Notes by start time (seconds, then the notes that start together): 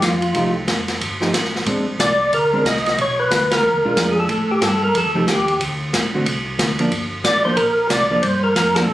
0.02 F2 F4, kick, snare, hi-hat pedal, ride
0.22 ride
0.35 C2 F3 A3 D#4 G4, kick, ride
0.67 F1, kick, snare, hi-hat pedal, ride
0.88 snare, ride
1.01 G1, kick, ride
1.21 F3 A3 D#4 G4, snare
1.34 A1, kick, snare, hi-hat pedal, ride
1.45 snare
1.55 snare
1.66 A#1 G#3 C4 D4, kick, ride
1.99 C2 D5, kick, snare, hi-hat pedal, ride
2.32 D2 A#4, kick, ride
2.53 G#3 C4 D4
2.65 C2 D#5, kick, snare, hi-hat pedal, ride
2.76 snare
2.86 snare, ride
2.98 B1 C#5, kick, ride
3.19 B4
3.30 D2, kick, snare, hi-hat pedal, ride
3.51 A#4, snare, ride
3.63 E2
3.73 D2
3.84 B1 G#3 D4 F4
3.96 F2, kick, snare, hi-hat pedal, ride
4.11 G#4
4.19 A4
4.29 A2, kick, ride
4.51 G4
4.61 G2 A4, kick, snare, hi-hat pedal, ride
4.84 A#4
4.95 F2 A4, kick, ride
5.04 D#2
5.15 C2 F3 A3 D#4 G4
5.27 D#2 G4, kick, snare, hi-hat pedal, ride
5.48 ride
5.60 D2, kick, ride
5.93 A1, kick, snare, hi-hat pedal, ride
6.12 A1 D3 A3 C4 F#4
6.25 C2, kick, ride
6.58 D2, kick, snare, hi-hat pedal, ride
6.79 F3 A#3 D4, ride
6.91 G1, kick, ride
7.24 A1 D5, kick, snare, hi-hat pedal, ride
7.45 F3 A#3 D4 C5
7.57 A#1 A#4, kick, ride
7.90 C2 D5, kick, snare, hi-hat pedal, ride
8.11 F3 A#3 D4
8.22 G2 C5, kick, ride
8.44 A#4
8.56 F2 A#4, kick, snare, hi-hat pedal, ride
8.75 F3 A#3 D4 A4, snare, ride
8.88 A#2